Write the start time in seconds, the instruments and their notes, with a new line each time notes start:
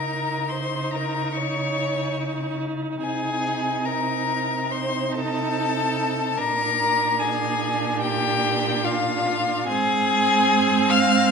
Already playing: cello C#3, viola D#4, violin A#4 A#5
0.49 violin C5 C6
0.91 violin A#4 A#5
1.32 violin C#6
1.36 violin C#5
3.01 cello C3, violin G#4 G#5
3.85 violin A#4 A#5
4.71 viola D#4, violin C5 C6
5.13 violin A4 A5
6.38 cello A#2, viola D4, violin A#4 A#5
7.19 violin G#4 G#5
8.01 violin G4 G5
8.85 violin F4 F5
9.68 cello G#2, viola C4, violin G#4 G#5
10.90 violin F5 F6